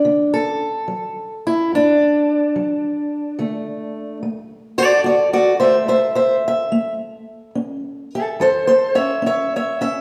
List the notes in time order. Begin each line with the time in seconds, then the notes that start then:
Already playing: D4
0.05 D3
0.34 A4
0.88 F#3
1.47 E4
1.73 A2 D4
2.56 F#3
3.39 D3 A3
4.23 A3
4.78 F#4 A4 D5
5.04 D3 F#4 D5
5.33 F#4 D5
5.60 A3 C5 E5
5.88 A3 C5 E5
6.15 C5 E5
6.48 E5
6.72 A3
7.55 C#4
8.14 A4 C5 E5
8.40 E3 A4 C5
8.67 A4 C5
8.95 C#4 C#5 E5
9.22 C#4
9.26 C#5 E5
9.56 C#5 E5
9.81 C#4 E5